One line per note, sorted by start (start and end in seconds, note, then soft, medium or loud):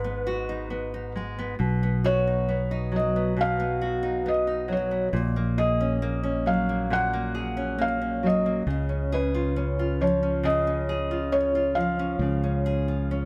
0.00 1.54 G#1 medium
0.00 1.54 G#2 medium
0.00 1.14 G#3 medium
0.00 0.48 D#4 soft
0.00 0.26 F#4 medium
0.00 1.11 B4 medium
0.04 0.69 B3 soft
0.27 2.04 F#4 medium
0.49 0.93 D#4 soft
0.70 1.37 B3 soft
0.94 1.54 D#4 soft
1.16 1.54 G#3 soft
1.39 1.54 B3 soft
1.59 5.09 B1 medium
1.59 3.35 B2 medium
1.83 2.47 B3 soft
2.04 3.80 F#4 medium
2.04 2.96 C#5 medium
2.27 2.70 D#4 soft
2.49 3.14 B3 soft
2.71 4.02 D#4 soft
2.92 4.67 F#3 medium
2.96 3.39 D#5 medium
3.16 3.58 B3 soft
3.37 5.13 B2 medium
3.41 4.29 F5 medium
3.60 4.25 B3 soft
3.81 5.58 F#4 soft
4.03 4.46 D#4 soft
4.26 4.90 B3 soft
4.26 4.72 D#5 medium
4.47 5.08 D#4 soft
4.68 5.07 F#3 medium
4.72 5.12 C#5 medium
4.91 5.08 B3 soft
5.13 8.62 A#1 medium
5.13 6.89 A#2 medium
5.36 6.01 A#3 soft
5.58 7.34 G#4 medium
5.58 6.49 D#5 medium
5.81 6.23 C#4 soft
6.02 6.68 A#3 medium
6.23 7.56 C#4 soft
6.46 8.22 F#3 medium
6.46 6.92 F5 medium
6.69 7.12 A#3 soft
6.90 8.61 A#2 medium
6.90 7.82 F#5 medium
7.13 7.77 A#3 medium
7.35 9.12 G#4 soft
7.57 8.01 C#4 soft
7.79 8.44 A#3 soft
7.79 8.25 F5 medium
8.02 8.89 C#4 soft
8.23 8.61 F#3 soft
8.23 8.65 D#5 medium
8.46 8.62 A#3 soft
8.67 12.15 C#2 medium
8.67 9.99 C#3 medium
8.89 9.56 C#4 soft
9.12 10.89 G#4 medium
9.12 10.03 B4 medium
9.34 9.79 F4 soft
9.56 10.22 C#4 soft
9.79 11.11 F4 soft
10.01 11.77 F3 soft
10.01 10.45 C#5 medium
10.23 10.66 C#4 soft
10.43 11.75 C#3 medium
10.43 11.35 D#5 medium
10.67 11.31 C#4 soft
10.89 12.65 G#4 medium
11.11 11.55 F4 soft
11.32 11.98 C#4 medium
11.32 11.77 C#5 medium
11.55 12.88 F4 soft
11.75 13.25 F3 soft
11.75 13.25 F5 medium
11.99 12.15 C#4 soft
12.19 13.25 C#2 medium
12.19 13.25 C#3 medium
12.43 13.08 C#4 soft
12.66 13.25 G#4 medium
12.88 13.25 F4 soft
13.11 13.25 C#4 soft